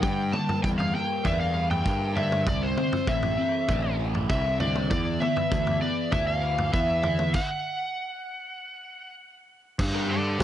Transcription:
0.02 picked electric bass G2, overdriven electric guitar G3, electric slide guitar G5, kick, floor tom
0.32 overdriven electric guitar A#3, electric slide guitar A5, mid tom
0.49 floor tom
0.62 picked electric bass E2, overdriven electric guitar G3, electric slide guitar G5, kick
0.79 electric slide guitar F5, floor tom
0.94 overdriven electric guitar A#3, electric slide guitar G5
1.24 picked electric bass E2, overdriven electric guitar D4, electric slide guitar E5, kick, floor tom
1.40 electric slide guitar F5
1.55 overdriven electric guitar G3
1.71 electric slide guitar G5, floor tom
1.84 picked electric bass G2, overdriven electric guitar A#3, kick
2.15 overdriven electric guitar D4, electric slide guitar E5, floor tom, mid tom
2.32 mid tom
2.46 picked electric bass C2, overdriven electric guitar C3, electric slide guitar D5, kick, floor tom
2.63 electric slide guitar C5
2.77 overdriven electric guitar C4, electric slide guitar C5, mid tom
2.93 floor tom
3.07 picked electric bass A1, overdriven electric guitar E3, electric slide guitar E5, kick
3.23 floor tom
3.38 overdriven electric guitar C4
3.68 picked electric bass A1, overdriven electric guitar D4, kick, floor tom
3.99 overdriven electric guitar E3
4.15 floor tom
4.30 picked electric bass C2, overdriven electric guitar C4, electric slide guitar E5, kick
4.60 overdriven electric guitar D4, electric slide guitar D5, floor tom, mid tom
4.75 mid tom
4.90 picked electric bass E2, overdriven electric guitar E3, electric slide guitar D5, kick, floor tom
5.20 overdriven electric guitar B3, electric slide guitar E5, mid tom
5.37 floor tom
5.51 picked electric bass D2, overdriven electric guitar E3, kick
5.67 floor tom
5.81 overdriven electric guitar B3, electric slide guitar D5
6.11 picked electric bass D2, overdriven electric guitar E4, electric slide guitar E5, kick, floor tom
6.27 electric slide guitar F5
6.42 overdriven electric guitar E3
6.58 floor tom
6.72 picked electric bass E2, overdriven electric guitar B3, electric slide guitar E5, kick
7.03 overdriven electric guitar E4, floor tom, mid tom
7.19 mid tom
7.34 electric slide guitar F#5, kick, crash
9.79 picked electric bass G2, kick, floor tom, crash
9.94 overdriven electric guitar G3 D4 G4 A#4
10.10 electric slide guitar A4 D5
10.40 picked electric bass G3, kick, floor tom

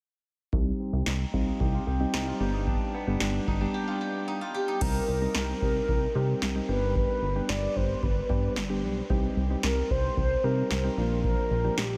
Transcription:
0.53 analog synth bass C2, synth keys G3 C4 D#4 G4, guzheng D#4, kick
0.80 guzheng C4
0.93 analog synth bass C2
1.06 analog synth bass C2, guzheng D#4, snare
1.33 analog synth bass C2, synth keys G3 C4 D#4 G4, guzheng F4, kick
1.46 guzheng D#4
1.60 analog synth bass C2, guzheng G4, kick
1.73 guzheng F4
1.87 analog synth bass C2, guzheng G4
2.00 synth keys G3 C4 D#4 G4
2.13 analog synth bass C2, guzheng D#4, snare
2.27 guzheng F4
2.40 analog synth bass G1, synth keys G3 B3 D4 G4, guzheng G4
2.54 guzheng D#4
2.67 guzheng D4, kick
2.94 guzheng B3
3.07 analog synth bass G1, synth keys G3 B3 D4 G4
3.20 analog synth bass G1, guzheng D4, snare
3.48 analog synth bass G1, guzheng D#4, kick
3.61 synth keys G3 B3 D4 G4, guzheng D4
3.74 guzheng G4
3.87 guzheng F4
4.01 guzheng G4
4.28 guzheng D#4
4.41 guzheng F4
4.54 guzheng G4, soft synth lead G4
4.68 guzheng D#4
4.81 analog synth bass C2, synth keys G3 C4 D#4 G4, soft synth lead A#4, kick, crash
5.08 analog synth bass C2
5.21 synth keys G3 C4 D#4 A#4
5.35 analog synth bass C2, snare
5.62 analog synth bass C2, soft synth lead A#4, kick
5.89 analog synth bass C2, kick
6.15 analog synth bass C3, synth keys G3 C4 D#4 G4
6.42 analog synth bass C2, snare
6.55 synth keys G3 C4 D#4 G4
6.69 analog synth bass G1, synth keys G3 B3 D4 G4, soft synth lead B4
6.95 soft synth lead B4, kick
7.22 analog synth bass G1
7.36 synth keys G3 B3 D4 G4
7.49 analog synth bass G1, soft synth lead D5, snare
7.76 analog synth bass G1, soft synth lead C5, kick
8.03 analog synth bass G1, soft synth lead B4, kick
8.29 analog synth bass G2, synth keys G3 B3 D4 G4, kick
8.56 analog synth bass G1, snare
8.70 synth keys G3 B3 D4 G4
8.83 analog synth bass B1
9.10 analog synth bass C2, synth keys G3 C4 D#4 G4, kick
9.37 analog synth bass C2
9.50 synth keys G3 C4 D#4 G4
9.63 analog synth bass C2, soft synth lead A#4, snare
9.90 analog synth bass C2, soft synth lead C5, kick
10.17 analog synth bass C2, soft synth lead C5, kick
10.44 analog synth bass C3, synth keys G3 C4 D#4 G4, soft synth lead A#4
10.71 analog synth bass C2, snare
10.84 synth keys G3 C4 D#4 G4
10.97 analog synth bass A#1, synth keys F3 A#3 D4 F4
11.24 soft synth lead A#4, kick
11.51 analog synth bass A#1
11.64 synth keys F3 A#3 D4 G4
11.78 analog synth bass A#1, soft synth lead G4, snare

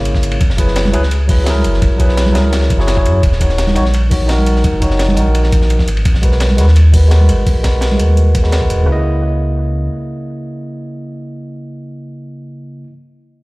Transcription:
Already playing: analog synth bass G#1, tine electric piano C#3 A#3 E4 C#5
0.05 closed hi-hat, ride
0.14 kick, snare
0.23 closed hi-hat, ride
0.32 ride
0.41 kick, closed hi-hat, ride
0.50 analog synth bass F#1, snare
0.57 tine electric piano F#3 E4 G#4 B4, kick, closed hi-hat, ride
0.68 snare
0.76 snare, closed hi-hat, ride
0.85 snare, high conga
0.92 analog synth bass C#2, tine electric piano F#3 E4 G#4 B4, closed hi-hat, ride
1.03 snare
1.11 closed hi-hat, ride
1.28 tine electric piano F#3 E4 G#4 B4, kick, closed hi-hat, open hi-hat
1.44 tine electric piano F#3 E4 G#4, snare, closed hi-hat, ride
1.50 tine electric piano A#4
1.55 high conga
1.64 analog synth bass F#1, closed hi-hat, ride
1.74 snare
1.82 kick, closed hi-hat, ride
1.91 analog synth bass B1
1.98 tine electric piano F#3 E4 G#4 B4, kick, closed hi-hat, ride
2.09 snare
2.17 snare, closed hi-hat, ride
2.26 snare, high conga
2.32 analog synth bass C#2, tine electric piano F#3 E4 G#4, snare, closed hi-hat, ride
2.38 tine electric piano A#4
2.44 high conga
2.53 snare, closed hi-hat, ride
2.63 snare
2.70 analog synth bass F#1, kick, closed hi-hat, ride
2.78 tine electric piano F#3 E4 G#4 C#5, snare
2.88 snare, closed hi-hat, ride
2.95 tine electric piano F#3 E4 G#4 C#5, kick
3.06 analog synth bass F#2, closed hi-hat, ride
3.23 analog synth bass D#1, kick, closed hi-hat, ride
3.32 snare
3.39 tine electric piano D#3 D#4 F#4 C#5, kick, closed hi-hat, ride
3.49 snare
3.58 snare, closed hi-hat, ride
3.67 snare, high conga
3.75 analog synth bass A#1, tine electric piano D#3 D#4 F#4 C#5, snare, closed hi-hat, ride
3.85 snare
3.94 closed hi-hat, ride
4.10 tine electric piano D#3 D#4 F#4 C#5, kick, closed hi-hat, open hi-hat
4.26 tine electric piano D#3 D#4, snare, closed hi-hat, ride
4.30 tine electric piano F#4 A#4
4.39 high conga
4.46 closed hi-hat, ride
4.56 snare
4.64 kick, closed hi-hat, ride
4.73 analog synth bass F#1
4.80 tine electric piano D#3 D#4 F#4 C#5, kick, closed hi-hat, ride
4.91 snare
4.99 snare, closed hi-hat, ride
5.08 snare, high conga
5.14 analog synth bass A#1, tine electric piano D#3 D#4, closed hi-hat, ride
5.18 tine electric piano F#4 A#4
5.26 high conga
5.35 closed hi-hat, ride
5.43 snare
5.52 kick, closed hi-hat, ride
5.62 snare
5.70 closed hi-hat, ride
5.79 kick, snare
5.88 analog synth bass G#1, closed hi-hat, ride
5.97 ride
6.05 kick, closed hi-hat, ride
6.14 analog synth bass B1, snare
6.22 tine electric piano G#3 F#4 A#4 B4, kick, closed hi-hat, ride
6.32 snare
6.40 snare, closed hi-hat, ride
6.49 snare, high conga
6.57 analog synth bass D#2, tine electric piano G#3 F#4 A#4 B4, snare, closed hi-hat, ride
6.68 snare
6.76 closed hi-hat, ride
6.92 tine electric piano G#3 F#4 A#4 B4, kick, closed hi-hat, open hi-hat
7.08 tine electric piano G#3 F#4, snare, closed hi-hat, ride
7.12 tine electric piano A#4 B4
7.21 high conga
7.29 analog synth bass G#1, closed hi-hat, ride
7.47 kick, closed hi-hat, open hi-hat
7.56 analog synth bass B1
7.63 tine electric piano G#3 F#4 A#4 B4, kick, snare, closed hi-hat, ride
7.81 snare, closed hi-hat, ride
7.90 snare, high conga
7.97 analog synth bass D#2, tine electric piano G#3 F#4 A#4, closed hi-hat, ride
8.03 tine electric piano B4
8.08 high conga
8.17 closed hi-hat
8.35 kick, closed hi-hat, ride
8.43 tine electric piano G#3 F#4 A#4 B4, snare
8.52 snare, closed hi-hat, ride
8.60 tine electric piano G#3 F#4 A#4 B4, kick
8.70 analog synth bass D#1, closed hi-hat, ride
8.83 tine electric piano C#3 A#3
8.88 analog synth bass C#2, tine electric piano E4
8.92 tine electric piano D#5

